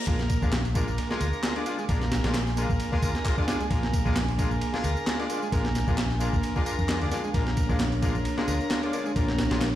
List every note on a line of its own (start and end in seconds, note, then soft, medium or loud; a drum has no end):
0.07 0.39 A#1 medium
0.07 0.20 G#3 medium
0.07 0.20 A#3 medium
0.07 0.51 A#3 medium
0.07 0.20 D4 medium
0.07 9.75 D4 medium
0.07 0.20 F4 medium
0.07 9.75 A#4 medium
0.07 7.33 G#5 medium
0.07 kick loud
0.07 ride medium
0.07 tambourine soft
0.19 snare medium
0.19 tambourine soft
0.30 kick medium
0.30 ride medium
0.30 tambourine medium
0.42 0.84 A#1 loud
0.42 0.53 G#3 medium
0.42 0.53 A#3 medium
0.42 0.53 D4 medium
0.42 0.53 F4 loud
0.42 kick medium
0.42 tambourine soft
0.52 0.60 A#3 medium
0.52 snare loud
0.52 clap loud
0.52 ride medium
0.52 tambourine soft
0.65 ride soft
0.65 tambourine soft
0.75 0.88 G#3 medium
0.75 0.88 A#3 medium
0.75 1.09 A#3 medium
0.75 0.88 D4 medium
0.75 0.88 F4 loud
0.75 kick medium
0.75 ride medium
0.75 tambourine medium
0.88 0.96 A#1 medium
0.88 tambourine soft
0.98 ride medium
0.98 tambourine soft
1.10 1.29 G#3 loud
1.10 1.29 A#3 medium
1.10 1.17 A#3 medium
1.10 1.29 D4 medium
1.10 1.29 F4 loud
1.10 snare medium
1.10 tambourine soft
1.21 1.31 D2 medium
1.21 1.55 A#4 medium
1.21 ride medium
1.21 tambourine medium
1.33 tambourine soft
1.43 1.54 G#3 medium
1.43 1.54 A#3 medium
1.43 1.54 D4 medium
1.43 1.54 F4 medium
1.43 snare loud
1.43 clap loud
1.43 ride medium
1.43 tambourine soft
1.56 1.65 G#3 medium
1.56 1.65 A#3 medium
1.56 1.77 D4 medium
1.56 1.65 D4 medium
1.56 1.65 F4 loud
1.56 ride soft
1.56 tambourine soft
1.66 1.79 G#3 medium
1.66 1.79 A#3 medium
1.66 1.79 D4 medium
1.66 1.79 F4 loud
1.66 ride medium
1.66 tambourine medium
1.79 1.85 G#3 medium
1.79 tambourine soft
1.89 2.21 A#1 medium
1.89 2.02 G#3 medium
1.89 2.33 A#3 medium
1.89 2.02 A#3 medium
1.89 2.02 D4 medium
1.89 2.02 F4 medium
1.89 kick loud
1.89 ride medium
1.89 tambourine soft
2.01 snare medium
2.01 tambourine soft
2.12 snare loud
2.12 ride medium
2.12 tambourine medium
2.24 2.66 A#1 loud
2.24 2.35 G#3 medium
2.24 2.35 A#3 medium
2.24 2.35 D4 medium
2.24 2.35 F4 loud
2.24 snare loud
2.24 ride medium
2.24 tambourine soft
2.34 2.42 A#3 medium
2.34 snare loud
2.34 clap loud
2.34 ride medium
2.34 tambourine soft
2.47 snare soft
2.47 tambourine soft
2.57 2.70 G#3 medium
2.57 2.91 A#3 medium
2.57 2.70 A#3 medium
2.57 2.70 D4 medium
2.57 2.70 F4 loud
2.57 ride medium
2.57 tambourine medium
2.70 2.78 A#1 medium
2.70 kick loud
2.70 tambourine soft
2.80 ride medium
2.80 tambourine soft
2.92 3.11 G#3 loud
2.92 2.99 A#3 medium
2.92 3.11 A#3 medium
2.92 3.11 D4 medium
2.92 3.11 F4 loud
2.92 kick loud
2.92 tambourine soft
3.02 3.13 D2 medium
3.02 3.37 A#4 medium
3.02 kick loud
3.02 ride medium
3.02 tambourine medium
3.15 snare soft
3.15 tambourine soft
3.25 3.36 G#3 medium
3.25 3.36 A#3 medium
3.25 3.36 D4 medium
3.25 3.36 F4 medium
3.25 kick medium
3.25 clap loud
3.25 ride medium
3.25 tambourine soft
3.38 3.46 G#3 medium
3.38 3.46 A#3 medium
3.38 3.46 D4 medium
3.38 3.59 D4 medium
3.38 3.46 F4 loud
3.38 kick medium
3.38 tambourine soft
3.48 3.61 G#3 medium
3.48 3.61 A#3 medium
3.48 3.61 D4 medium
3.48 3.61 F4 loud
3.48 snare loud
3.48 ride medium
3.48 tambourine medium
3.60 3.67 G#3 medium
3.60 ride soft
3.60 tambourine soft
3.70 4.02 A#1 loud
3.70 3.84 G#3 medium
3.70 4.15 A#3 medium
3.70 3.84 A#3 medium
3.70 3.84 D4 medium
3.70 3.84 F4 medium
3.70 kick loud
3.70 ride medium
3.70 tambourine soft
3.83 snare medium
3.83 tambourine soft
3.93 kick loud
3.93 ride medium
3.93 tambourine medium
4.06 4.48 A#1 loud
4.06 4.17 G#3 medium
4.06 4.17 A#3 medium
4.06 4.17 D4 medium
4.06 4.17 F4 loud
4.06 kick loud
4.06 tambourine soft
4.16 4.24 A#3 medium
4.16 snare loud
4.16 clap loud
4.16 ride medium
4.16 tambourine soft
4.28 ride soft
4.28 tambourine soft
4.39 4.52 G#3 medium
4.39 4.52 A#3 medium
4.39 4.73 A#3 medium
4.39 4.52 D4 medium
4.39 4.52 F4 loud
4.39 kick medium
4.39 ride medium
4.39 tambourine medium
4.51 4.60 A#1 medium
4.51 tambourine soft
4.61 ride medium
4.61 tambourine soft
4.74 4.93 G#3 loud
4.74 4.93 A#3 medium
4.74 4.80 A#3 medium
4.74 4.93 D4 medium
4.74 4.93 F4 loud
4.74 snare medium
4.74 tambourine soft
4.84 4.94 D2 medium
4.84 5.18 A#4 medium
4.84 ride medium
4.84 tambourine medium
4.97 tambourine soft
5.07 5.18 G#3 medium
5.07 5.18 A#3 medium
5.07 5.18 D4 medium
5.07 5.18 F4 medium
5.07 snare loud
5.07 clap loud
5.07 ride medium
5.07 tambourine soft
5.19 5.28 G#3 medium
5.19 5.28 A#3 medium
5.19 5.28 D4 medium
5.19 5.41 D4 medium
5.19 5.28 F4 loud
5.19 ride soft
5.19 tambourine soft
5.30 5.43 G#3 medium
5.30 5.43 A#3 medium
5.30 5.43 D4 medium
5.30 5.43 F4 loud
5.30 ride medium
5.30 tambourine medium
5.42 5.49 G#3 medium
5.42 tambourine soft
5.52 5.84 A#1 loud
5.52 5.65 G#3 medium
5.52 5.65 A#3 medium
5.52 5.97 A#3 medium
5.52 5.65 D4 medium
5.52 5.65 F4 medium
5.52 kick loud
5.52 ride medium
5.52 tambourine soft
5.65 snare medium
5.65 tambourine soft
5.75 snare medium
5.75 ride medium
5.75 tambourine medium
5.87 6.30 A#1 loud
5.87 5.99 G#3 medium
5.87 5.99 A#3 medium
5.87 5.99 D4 medium
5.87 5.99 F4 loud
5.87 kick loud
5.87 tambourine soft
5.98 6.06 A#3 medium
5.98 snare loud
5.98 clap loud
5.98 ride medium
5.98 tambourine soft
6.10 snare soft
6.10 tambourine soft
6.20 6.34 G#3 medium
6.20 6.34 A#3 medium
6.20 6.55 A#3 medium
6.20 6.34 D4 medium
6.20 6.34 F4 loud
6.20 ride medium
6.20 tambourine medium
6.33 6.42 A#1 medium
6.33 kick loud
6.33 tambourine soft
6.43 ride medium
6.43 tambourine soft
6.56 6.75 G#3 loud
6.56 6.62 A#3 medium
6.56 6.75 A#3 medium
6.56 6.75 D4 medium
6.56 6.75 F4 loud
6.56 kick loud
6.56 tambourine soft
6.66 7.00 A#4 medium
6.66 ride medium
6.66 tambourine medium
6.79 7.01 F2 medium
6.79 tambourine soft
6.89 6.99 G#3 medium
6.89 6.99 A#3 medium
6.89 6.99 D4 medium
6.89 6.99 F4 medium
6.89 snare loud
6.89 clap loud
6.89 ride medium
6.89 tambourine soft
7.01 7.10 D2 loud
7.01 7.10 G#3 medium
7.01 7.10 A#3 medium
7.01 7.23 D4 medium
7.01 7.10 D4 medium
7.01 7.10 F4 loud
7.01 ride soft
7.01 tambourine soft
7.11 7.25 G#3 medium
7.11 7.25 A#3 medium
7.11 7.25 D4 medium
7.11 7.25 F4 loud
7.11 snare soft
7.11 ride medium
7.11 tambourine medium
7.24 7.30 G#3 medium
7.24 tambourine soft
7.34 7.66 A#1 loud
7.34 7.47 G#3 medium
7.34 7.47 A#3 medium
7.34 7.78 A#3 medium
7.34 7.47 D4 medium
7.34 7.47 F4 medium
7.34 9.75 C#5 medium
7.34 kick loud
7.34 ride medium
7.34 tambourine soft
7.47 snare medium
7.47 tambourine soft
7.57 kick loud
7.57 ride medium
7.57 tambourine medium
7.69 8.11 A#1 loud
7.69 7.80 G#3 medium
7.69 7.80 A#3 medium
7.69 7.80 D4 medium
7.69 7.80 F4 loud
7.69 kick loud
7.69 tambourine soft
7.80 7.87 A#3 medium
7.80 snare loud
7.80 clap loud
7.80 ride medium
7.80 tambourine soft
7.92 ride soft
7.92 tambourine soft
8.02 8.16 G#3 medium
8.02 8.36 A#3 medium
8.02 8.16 A#3 medium
8.02 8.16 D4 medium
8.02 8.16 F4 loud
8.02 kick medium
8.02 ride medium
8.02 tambourine medium
8.15 8.23 A#1 medium
8.15 tambourine soft
8.25 ride medium
8.25 tambourine soft
8.38 8.57 G#3 loud
8.38 8.57 A#3 medium
8.38 8.44 A#3 medium
8.38 8.57 D4 medium
8.38 8.57 F4 loud
8.38 snare medium
8.38 tambourine soft
8.48 8.58 D2 medium
8.48 8.82 A#4 medium
8.48 ride medium
8.48 tambourine medium
8.61 tambourine soft
8.71 8.81 G#3 medium
8.71 8.81 A#3 medium
8.71 8.81 D4 medium
8.71 8.81 F4 medium
8.71 snare loud
8.71 clap loud
8.71 ride medium
8.71 tambourine soft
8.83 8.92 G#3 medium
8.83 8.92 A#3 medium
8.83 9.05 D4 medium
8.83 8.92 D4 medium
8.83 8.92 F4 loud
8.83 ride soft
8.83 tambourine soft
8.93 9.07 G#3 medium
8.93 9.07 A#3 medium
8.93 9.07 D4 medium
8.93 9.07 F4 loud
8.93 ride medium
8.93 tambourine medium
9.06 9.12 G#3 medium
9.06 tambourine soft
9.16 9.48 A#1 loud
9.16 9.29 G#3 medium
9.16 9.29 A#3 medium
9.16 9.60 A#3 medium
9.16 9.29 D4 medium
9.16 9.29 F4 medium
9.16 kick loud
9.16 ride medium
9.16 tambourine soft
9.28 snare medium
9.28 tambourine soft
9.39 snare loud
9.39 ride medium
9.39 tambourine medium
9.51 9.75 A#1 loud
9.51 9.62 G#3 loud
9.51 9.62 A#3 medium
9.51 9.62 D4 medium
9.51 9.62 F4 loud
9.51 snare loud
9.51 ride medium
9.51 tambourine soft
9.61 9.69 A#3 medium
9.61 snare loud
9.61 clap loud
9.61 ride medium
9.61 tambourine soft